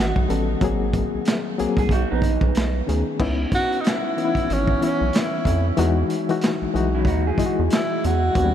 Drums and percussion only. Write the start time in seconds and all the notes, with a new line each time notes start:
0.00 clap
0.16 kick
0.30 closed hi-hat
0.61 kick, closed hi-hat
0.93 kick, closed hi-hat
1.25 snare, clap, closed hi-hat
1.59 closed hi-hat
1.77 kick, closed hi-hat
1.89 kick, closed hi-hat
2.22 kick, closed hi-hat
2.41 kick
2.55 snare, clap, closed hi-hat
2.89 closed hi-hat
3.20 kick, crash
3.52 kick, closed hi-hat
3.72 closed hi-hat
3.84 snare, clap, closed hi-hat
4.18 closed hi-hat
4.35 kick, closed hi-hat
4.50 closed hi-hat
4.67 kick
4.82 closed hi-hat
5.13 snare, clap, closed hi-hat
5.45 kick, closed hi-hat
5.77 closed hi-hat
6.10 closed hi-hat
6.29 closed hi-hat
6.41 snare, clap, closed hi-hat
6.76 closed hi-hat
7.05 kick, closed hi-hat
7.38 kick, closed hi-hat
7.70 snare, clap, closed hi-hat
8.04 closed hi-hat
8.35 kick, closed hi-hat